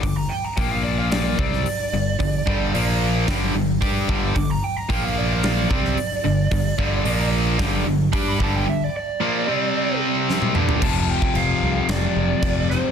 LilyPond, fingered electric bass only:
\new Staff \with { instrumentName = "Fingered electric bass" } { \clef bass \time 4/4 \key f \lydian \tempo 4 = 111 g,,8 r8 bes,,4. c,8 r8 g,,8 | g,,8 g,,8 bes,,4 r8 g,,8 g,8 g,,8 | g,,8 r8 bes,,4. c,8 r8 g,,8 | g,,8 g,,8 bes,,4 r8 g,,8 g,8 g,,8 |
r1 | f,,4 f,,8 c,8 f,,8 f,,8 f,,4 | }